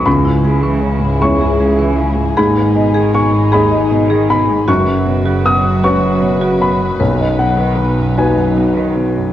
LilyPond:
<<
  \new Staff \with { instrumentName = "Grand piano" } { \time 6/8 \key cis \minor \tempo 4. = 52 << { b''4. cis'''4. | b''4 cis'''8 b''4 b''8 | cis'''4 dis'''8 cis'''4 b''8 | r8 fis''4 gis''4. | } \\ { cis,4. <gis e' cis''>4. | gis,4. <gis dis' dis''>4. | fis,4. <cis' fis' b'>4. | b,,4. <dis' fis' b'>4. | } >> }
  \new Staff \with { instrumentName = "Marimba" } { \time 6/8 \key cis \minor cis'16 e'16 gis'16 cis'16 cis''16 r16 cis'16 gis'16 gis'16 cis'16 r8 | gis'16 b'16 dis''16 gis'16 gis''16 r16 gis'16 dis''16 dis''16 gis'16 r8 | fis'16 b'16 cis''16 fis'16 fis''16 r16 fis'16 cis''16 cis''16 fis'16 r8 | b'16 dis''16 fis''16 b'16 b''16 r16 b'16 fis''16 fis''16 b'16 r8 | }
  \new Staff \with { instrumentName = "String section" } { \time 6/8 \key cis \minor << { <gis gis'>2.~ | <gis gis'>2. | <fis b'>2.~ | <fis b'>2. | } \\ { e'2. | dis'2. | fis'2. | dis'2. | } >> }
  \new Staff \with { instrumentName = "Cello" } { \clef bass \time 6/8 \key cis \minor e,16 gis,16 cis16 e16 cis16 gis,16 e,16 gis,16 cis16 e16 cis16 gis,16 | dis,16 gis,16 b,16 dis16 b,16 gis,16 dis,16 gis,16 b,16 dis16 b,16 gis,16 | cis,16 fis,16 b,16 cis16 b,16 fis,16 cis,16 fis,16 b,16 cis16 b,16 fis,16 | dis,16 fis,16 b,16 dis16 b,16 fis,16 dis,16 fis,16 b,16 dis16 b,16 fis,16 | }
  \new Staff \with { instrumentName = "Double bass" } { \clef bass \time 6/8 \key cis \minor cis,2. | gis,,2. | fis,,2. | b,,2. | }
>>